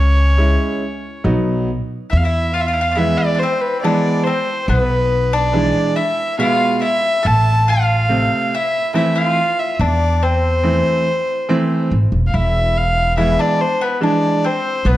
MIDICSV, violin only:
0, 0, Header, 1, 2, 480
1, 0, Start_track
1, 0, Tempo, 857143
1, 1182, Time_signature, 3, 2, 24, 8
1, 4055, Tempo, 845070
1, 8445, End_track
2, 0, Start_track
2, 0, Title_t, "Violin"
2, 0, Program_c, 0, 40
2, 0, Note_on_c, 0, 73, 82
2, 694, Note_off_c, 0, 73, 0
2, 1182, Note_on_c, 0, 76, 78
2, 1216, Note_on_c, 0, 77, 69
2, 1224, Note_off_c, 0, 76, 0
2, 1252, Note_on_c, 0, 76, 86
2, 1260, Note_off_c, 0, 77, 0
2, 1420, Note_on_c, 0, 77, 86
2, 1428, Note_off_c, 0, 76, 0
2, 1461, Note_on_c, 0, 76, 63
2, 1470, Note_off_c, 0, 77, 0
2, 1496, Note_on_c, 0, 77, 77
2, 1505, Note_off_c, 0, 76, 0
2, 1668, Note_on_c, 0, 76, 79
2, 1677, Note_off_c, 0, 77, 0
2, 1779, Note_on_c, 0, 74, 87
2, 1787, Note_off_c, 0, 76, 0
2, 1899, Note_on_c, 0, 72, 81
2, 1908, Note_off_c, 0, 74, 0
2, 2019, Note_on_c, 0, 71, 73
2, 2027, Note_off_c, 0, 72, 0
2, 2135, Note_off_c, 0, 71, 0
2, 2139, Note_on_c, 0, 74, 81
2, 2375, Note_on_c, 0, 72, 82
2, 2384, Note_off_c, 0, 74, 0
2, 2616, Note_on_c, 0, 71, 95
2, 2624, Note_off_c, 0, 72, 0
2, 2986, Note_on_c, 0, 74, 95
2, 2994, Note_off_c, 0, 71, 0
2, 3339, Note_on_c, 0, 76, 85
2, 3347, Note_off_c, 0, 74, 0
2, 3578, Note_off_c, 0, 76, 0
2, 3581, Note_on_c, 0, 77, 92
2, 3802, Note_off_c, 0, 77, 0
2, 3825, Note_on_c, 0, 76, 101
2, 4070, Note_on_c, 0, 81, 114
2, 4079, Note_off_c, 0, 76, 0
2, 4308, Note_on_c, 0, 77, 94
2, 4317, Note_off_c, 0, 81, 0
2, 4796, Note_on_c, 0, 76, 90
2, 4804, Note_off_c, 0, 77, 0
2, 5023, Note_off_c, 0, 76, 0
2, 5027, Note_on_c, 0, 76, 78
2, 5154, Note_on_c, 0, 77, 87
2, 5163, Note_off_c, 0, 76, 0
2, 5390, Note_on_c, 0, 76, 73
2, 5398, Note_off_c, 0, 77, 0
2, 5478, Note_off_c, 0, 76, 0
2, 5478, Note_on_c, 0, 76, 57
2, 5514, Note_on_c, 0, 74, 86
2, 5523, Note_off_c, 0, 76, 0
2, 5754, Note_on_c, 0, 72, 82
2, 5763, Note_off_c, 0, 74, 0
2, 6710, Note_off_c, 0, 72, 0
2, 6911, Note_on_c, 0, 77, 57
2, 6956, Note_on_c, 0, 76, 78
2, 6965, Note_off_c, 0, 77, 0
2, 7195, Note_on_c, 0, 77, 82
2, 7204, Note_off_c, 0, 76, 0
2, 7426, Note_off_c, 0, 77, 0
2, 7430, Note_on_c, 0, 76, 79
2, 7558, Note_on_c, 0, 74, 83
2, 7567, Note_off_c, 0, 76, 0
2, 7675, Note_on_c, 0, 72, 86
2, 7683, Note_off_c, 0, 74, 0
2, 7796, Note_on_c, 0, 71, 75
2, 7805, Note_off_c, 0, 72, 0
2, 7909, Note_off_c, 0, 71, 0
2, 7924, Note_on_c, 0, 74, 76
2, 8155, Note_on_c, 0, 72, 79
2, 8164, Note_off_c, 0, 74, 0
2, 8394, Note_on_c, 0, 71, 82
2, 8402, Note_off_c, 0, 72, 0
2, 8445, Note_off_c, 0, 71, 0
2, 8445, End_track
0, 0, End_of_file